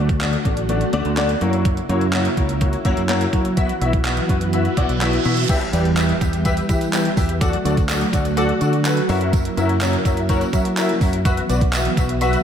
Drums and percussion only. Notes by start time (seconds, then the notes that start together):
0.09 kick, closed hi-hat
0.21 clap, closed hi-hat
0.33 closed hi-hat
0.45 kick, closed hi-hat
0.57 closed hi-hat
0.69 closed hi-hat
0.81 closed hi-hat
0.93 closed hi-hat
1.05 closed hi-hat
1.17 clap, closed hi-hat
1.29 closed hi-hat
1.41 closed hi-hat
1.53 closed hi-hat
1.65 kick, closed hi-hat
1.77 closed hi-hat
1.90 closed hi-hat
2.01 closed hi-hat
2.13 clap, closed hi-hat
2.25 closed hi-hat
2.37 kick, closed hi-hat
2.49 closed hi-hat
2.61 kick, closed hi-hat
2.73 closed hi-hat
2.85 kick, closed hi-hat
2.97 closed hi-hat
3.09 clap, closed hi-hat
3.21 closed hi-hat
3.33 kick, closed hi-hat
3.45 closed hi-hat
3.57 kick, closed hi-hat
3.69 closed hi-hat
3.82 closed hi-hat
3.93 kick, closed hi-hat
4.05 clap, closed hi-hat
4.17 closed hi-hat
4.29 kick, closed hi-hat
4.41 closed hi-hat
4.53 closed hi-hat
4.65 closed hi-hat
4.77 kick, closed hi-hat
4.89 closed hi-hat
5.01 clap, closed hi-hat
5.13 closed hi-hat
5.25 open hi-hat
5.37 closed hi-hat
5.49 kick, closed hi-hat, crash, tambourine
5.61 closed hi-hat
5.73 closed hi-hat, tambourine
5.85 closed hi-hat
5.97 clap, closed hi-hat, tambourine
6.09 closed hi-hat
6.21 kick, closed hi-hat, tambourine
6.33 closed hi-hat, tambourine
6.45 kick, closed hi-hat, tambourine
6.57 closed hi-hat, tambourine
6.69 kick, closed hi-hat, tambourine
6.81 closed hi-hat, tambourine
6.93 clap, closed hi-hat, tambourine
7.05 closed hi-hat
7.17 kick, open hi-hat, tambourine
7.29 closed hi-hat
7.41 kick, closed hi-hat, tambourine
7.53 closed hi-hat
7.65 closed hi-hat, tambourine
7.77 kick, closed hi-hat, tambourine
7.89 clap, closed hi-hat, tambourine
8.01 closed hi-hat
8.13 kick, closed hi-hat, tambourine
8.25 closed hi-hat, tambourine
8.37 closed hi-hat, tambourine
8.49 closed hi-hat
8.61 closed hi-hat, tambourine
8.73 closed hi-hat
8.85 clap, closed hi-hat, tambourine
8.97 closed hi-hat
9.09 open hi-hat, tambourine
9.21 closed hi-hat
9.33 kick, closed hi-hat, tambourine
9.45 closed hi-hat
9.57 closed hi-hat, tambourine
9.69 closed hi-hat
9.81 clap, closed hi-hat, tambourine
9.93 closed hi-hat
10.05 kick, closed hi-hat, tambourine
10.17 closed hi-hat
10.29 kick, closed hi-hat, tambourine
10.41 closed hi-hat, tambourine
10.53 kick, closed hi-hat, tambourine
10.65 closed hi-hat
10.77 clap, closed hi-hat, tambourine
10.89 closed hi-hat
11.01 kick, open hi-hat, tambourine
11.13 closed hi-hat
11.25 kick, closed hi-hat, tambourine
11.37 closed hi-hat
11.49 closed hi-hat, tambourine
11.61 kick, closed hi-hat
11.73 clap, closed hi-hat, tambourine
11.85 closed hi-hat
11.97 kick, closed hi-hat, tambourine
12.09 closed hi-hat
12.21 closed hi-hat, tambourine
12.33 closed hi-hat, tambourine